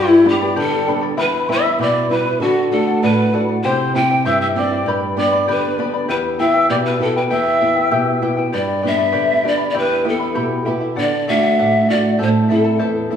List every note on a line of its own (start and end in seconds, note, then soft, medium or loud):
0.00 0.54 G2 medium
0.00 0.30 E4 medium
0.00 0.25 G4 medium
0.00 0.24 B4 medium
0.00 0.25 D5 medium
0.00 0.28 E5 medium
0.00 0.24 G5 medium
0.00 0.25 B5 medium
0.25 0.74 G3 soft
0.25 0.75 B3 soft
0.25 0.75 D4 medium
0.25 0.61 G4 medium
0.25 0.41 B4 medium
0.25 0.40 D5 medium
0.25 0.41 G5 medium
0.25 0.58 G5 medium
0.25 0.40 B5 medium
0.41 0.55 B4 soft
0.41 0.55 D5 soft
0.41 0.56 B5 medium
0.56 1.16 D3 medium
0.56 0.87 G4 medium
0.56 1.04 A4 medium
0.56 0.86 B4 medium
0.56 0.86 D5 medium
0.56 0.85 G5 medium
0.56 1.03 A5 medium
0.56 0.87 B5 medium
0.86 1.12 G3 soft
0.86 1.12 B3 soft
0.86 1.13 D4 medium
0.86 1.02 B4 medium
0.86 1.01 D5 medium
0.86 1.02 G5 medium
0.86 1.00 B5 medium
1.02 1.16 B4 soft
1.02 1.17 D5 soft
1.02 1.17 B5 soft
1.17 1.77 E2 medium
1.17 1.48 E4 medium
1.17 1.48 B4 medium
1.17 1.53 B4 loud
1.17 1.48 E5 medium
1.17 1.48 G5 medium
1.17 1.49 B5 medium
1.17 1.51 B5 medium
1.49 1.98 G3 soft
1.49 1.98 B3 soft
1.49 1.64 E4 medium
1.49 1.98 E4 medium
1.49 1.64 E5 medium
1.49 1.81 E5 medium
1.49 1.64 G5 medium
1.49 1.64 B5 medium
1.49 1.80 E6 medium
1.65 1.79 E4 soft
1.65 1.79 E5 soft
1.65 1.80 B5 soft
1.79 2.39 B2 medium
1.79 2.10 E4 medium
1.79 2.10 B4 medium
1.79 2.09 D5 medium
1.79 2.10 E5 medium
1.79 2.09 G5 medium
1.79 2.10 B5 medium
1.79 2.08 D6 medium
2.09 2.34 G3 soft
2.09 2.34 B3 soft
2.09 2.34 E4 medium
2.09 2.26 E4 medium
2.09 2.43 B4 medium
2.09 2.25 E5 medium
2.09 2.26 G5 medium
2.09 2.43 B5 medium
2.09 2.25 B5 medium
2.26 2.41 E4 soft
2.26 2.41 E5 soft
2.26 2.41 B5 soft
2.40 3.00 D3 medium
2.40 2.71 F#4 loud
2.40 2.71 A4 medium
2.40 2.72 D5 medium
2.40 2.71 F#5 medium
2.40 2.72 F#5 medium
2.71 3.20 A3 soft
2.71 3.21 D4 soft
2.71 3.21 F#4 soft
2.71 3.04 A4 medium
2.71 2.87 A4 medium
2.71 2.88 D5 medium
2.71 2.86 F#5 medium
2.71 3.05 A5 medium
2.87 3.02 D5 soft
2.87 3.02 F#5 soft
3.03 3.62 A2 medium
3.03 3.32 A4 medium
3.03 3.40 B4 medium
3.03 3.33 D5 medium
3.03 3.33 F#5 medium
3.03 3.48 B5 medium
3.33 3.57 A3 soft
3.33 3.57 D4 soft
3.33 3.58 F#4 soft
3.33 3.48 A4 medium
3.33 3.48 D5 medium
3.33 3.47 F#5 medium
3.48 3.64 D5 soft
3.48 3.63 F#5 soft
3.64 4.23 C3 medium
3.64 3.94 E4 medium
3.64 3.94 G4 medium
3.64 3.96 C5 loud
3.64 3.94 C5 medium
3.64 3.94 E5 medium
3.64 3.95 G5 medium
3.64 3.97 C6 medium
3.95 4.43 C4 soft
3.95 4.43 E4 soft
3.95 4.10 E4 medium
3.95 4.44 G4 medium
3.95 4.09 C5 medium
3.95 4.10 E5 medium
3.95 4.27 G5 medium
3.95 4.09 G5 medium
4.10 4.24 E4 soft
4.10 4.25 C5 soft
4.10 4.25 G5 soft
4.25 4.85 G2 medium
4.25 4.55 E4 medium
4.25 4.56 G4 medium
4.25 4.55 C5 medium
4.25 4.55 E5 medium
4.25 4.40 E5 medium
4.25 4.56 G5 medium
4.25 4.40 E6 medium
4.41 4.47 E5 medium
4.41 4.47 E6 medium
4.55 4.80 C4 soft
4.55 4.80 E4 soft
4.55 4.71 E4 medium
4.55 4.80 G4 medium
4.55 4.71 C5 medium
4.55 4.88 D5 medium
4.55 4.71 E5 medium
4.55 4.70 G5 medium
4.55 4.88 D6 medium
4.71 4.87 E4 soft
4.71 4.86 C5 soft
4.71 4.86 G5 medium
4.86 5.45 G2 medium
4.86 5.17 G4 medium
4.86 5.16 B4 medium
4.86 5.16 D5 medium
4.86 5.15 G5 medium
4.86 5.17 B5 medium
5.16 5.65 B3 soft
5.16 5.66 D4 soft
5.16 5.66 G4 medium
5.16 5.31 B4 medium
5.16 5.31 D5 medium
5.16 5.47 D5 medium
5.16 5.32 G5 medium
5.16 5.30 B5 medium
5.16 5.46 D6 medium
5.31 5.47 B4 soft
5.31 5.47 D5 soft
5.31 5.47 B5 soft
5.48 6.07 D3 medium
5.48 5.78 G4 medium
5.48 5.78 B4 medium
5.48 5.92 B4 medium
5.48 5.78 D5 medium
5.48 5.78 G5 medium
5.48 5.90 B5 medium
5.48 5.78 B5 medium
5.78 6.02 B3 soft
5.78 6.03 D4 soft
5.78 6.03 G4 medium
5.78 5.93 B4 medium
5.78 5.93 D5 medium
5.78 5.93 G5 medium
5.78 5.92 B5 medium
5.94 6.08 B4 soft
5.94 6.09 D5 soft
5.94 6.08 B5 medium
6.08 6.68 E2 medium
6.08 6.38 E4 medium
6.08 6.39 G4 medium
6.08 6.39 B4 medium
6.08 6.17 B4 loud
6.08 6.38 E5 medium
6.08 6.39 G5 medium
6.08 6.17 B5 medium
6.39 6.88 B3 soft
6.39 6.54 E4 medium
6.39 6.88 E4 soft
6.39 6.89 G4 medium
6.39 6.53 B4 medium
6.39 6.54 E5 medium
6.39 6.68 E5 medium
6.39 6.53 G5 medium
6.39 6.68 E6 medium
6.54 6.69 E4 soft
6.54 6.69 B4 medium
6.54 6.69 G5 soft
6.69 7.29 B2 medium
6.69 7.00 E4 medium
6.69 7.00 G4 medium
6.69 7.00 B4 medium
6.69 6.76 D5 medium
6.69 6.99 E5 medium
6.69 7.00 G5 medium
6.69 6.77 D6 medium
6.86 6.99 B4 medium
6.86 6.99 B5 medium
7.00 7.24 B3 soft
7.00 7.24 E4 soft
7.00 7.16 E4 medium
7.00 7.25 G4 medium
7.00 7.15 A4 medium
7.00 7.16 B4 medium
7.00 7.15 E5 medium
7.00 7.15 G5 medium
7.00 7.15 A5 medium
7.16 7.29 E4 soft
7.16 7.23 B4 medium
7.16 7.30 B4 soft
7.16 7.29 G5 medium
7.16 7.22 B5 medium
7.30 7.90 E2 medium
7.30 7.60 E4 medium
7.30 7.61 G4 medium
7.30 7.60 B4 medium
7.30 7.59 E5 medium
7.30 8.19 E5 loud
7.30 7.60 G5 medium
7.30 8.18 E6 medium
7.61 8.10 B3 soft
7.61 7.75 E4 medium
7.61 8.10 E4 soft
7.61 8.11 G4 medium
7.61 7.75 B4 medium
7.61 7.76 E5 medium
7.61 7.74 G5 medium
7.76 7.90 E4 soft
7.76 7.91 B4 soft
7.76 7.91 G5 soft
7.91 8.51 B2 medium
7.91 8.21 E4 medium
7.91 8.22 G4 medium
7.91 8.21 B4 medium
7.91 8.21 E5 medium
7.91 8.21 G5 medium
8.22 8.47 B3 soft
8.22 8.37 E4 medium
8.22 8.47 E4 soft
8.22 8.47 G4 medium
8.22 8.36 B4 medium
8.22 8.37 E5 medium
8.22 8.36 G5 medium
8.37 8.53 E4 soft
8.37 8.52 B4 soft
8.37 8.51 G5 medium
8.52 9.12 G2 medium
8.52 8.83 G4 medium
8.52 8.82 B4 medium
8.52 8.82 D5 medium
8.52 8.82 D5 loud
8.52 8.81 G5 medium
8.52 8.82 B5 medium
8.82 9.33 B3 soft
8.82 9.33 D4 soft
8.82 9.33 G4 soft
8.82 8.97 B4 medium
8.82 8.97 D5 medium
8.82 8.98 G5 medium
8.82 8.96 B5 medium
8.86 9.49 E5 loud
8.97 9.11 B4 soft
8.97 9.11 D5 soft
8.97 9.11 B5 soft
9.12 9.73 D3 medium
9.12 9.43 G4 medium
9.12 9.43 B4 medium
9.12 9.43 D5 medium
9.12 9.42 G5 medium
9.12 9.44 B5 medium
9.43 9.69 B3 soft
9.43 9.69 D4 soft
9.43 9.69 G4 medium
9.43 9.58 B4 medium
9.43 9.57 D5 medium
9.43 9.69 D5 medium
9.43 9.59 G5 medium
9.43 9.57 B5 medium
9.58 9.74 B4 soft
9.58 9.74 D5 soft
9.58 9.74 B5 soft
9.70 9.79 D5 medium
9.74 10.34 E2 medium
9.74 10.03 E4 medium
9.74 10.05 G4 medium
9.74 10.10 B4 medium
9.74 10.04 E5 medium
9.74 10.03 G5 medium
9.74 10.04 B5 medium
10.04 10.54 B3 soft
10.04 10.20 E4 medium
10.04 10.54 E4 soft
10.04 10.55 G4 medium
10.04 10.19 E5 medium
10.04 10.20 G5 medium
10.04 10.18 B5 medium
10.08 10.68 A4 medium
10.20 10.34 E4 soft
10.20 10.34 E5 soft
10.20 10.34 B5 medium
10.35 10.95 B2 medium
10.35 10.64 E4 medium
10.35 10.66 G4 medium
10.35 10.65 E5 medium
10.35 10.64 G5 medium
10.35 10.65 B5 medium
10.65 10.91 B3 soft
10.65 10.80 E4 medium
10.65 10.91 E4 soft
10.65 10.91 G4 medium
10.65 10.80 E5 medium
10.65 10.81 G5 medium
10.65 10.79 B5 medium
10.80 10.97 E4 soft
10.80 10.95 E5 soft
10.80 10.96 B5 soft
10.96 11.57 D3 medium
10.96 11.26 A4 medium
10.96 11.27 D5 medium
10.96 11.27 D5 loud
10.96 11.27 F#5 medium
11.27 11.77 A3 soft
11.27 11.78 D4 soft
11.27 11.78 F#4 medium
11.27 11.43 A4 medium
11.27 11.43 D5 medium
11.27 11.91 E5 loud
11.27 11.42 F#5 medium
11.43 11.58 D5 soft
11.43 11.58 F#5 soft
11.59 12.18 A2 medium
11.59 11.87 A4 medium
11.59 11.88 D5 medium
11.59 11.89 F#5 medium
11.89 12.14 A3 soft
11.89 12.14 D4 soft
11.89 12.14 F#4 medium
11.89 12.04 A4 medium
11.89 12.03 D5 medium
11.89 12.20 D5 medium
11.89 12.02 F#5 medium
12.03 12.18 D5 soft
12.03 12.18 F#5 soft
12.18 12.79 A2 medium
12.18 12.48 E4 medium
12.18 12.48 A4 medium
12.18 12.49 C5 medium
12.18 12.29 C5 loud
12.18 12.47 E5 medium
12.18 12.49 A5 medium
12.49 12.99 A3 soft
12.49 12.99 C4 soft
12.49 12.64 E4 medium
12.49 12.99 E4 medium
12.49 12.64 A4 medium
12.49 13.08 A4 medium
12.49 12.64 E5 medium
12.49 12.63 A5 medium
12.64 12.78 E4 soft
12.64 12.78 A4 soft
12.64 12.78 A5 soft
12.79 13.16 E2 medium
12.79 13.09 E4 medium
12.79 13.10 A4 medium
12.79 13.10 C5 medium
12.79 13.09 E5 medium
12.79 13.10 A5 medium
13.10 13.16 A3 soft
13.10 13.16 C4 soft
13.10 13.16 E4 medium
13.10 13.16 A4 medium
13.10 13.16 E5 soft
13.10 13.16 A5 medium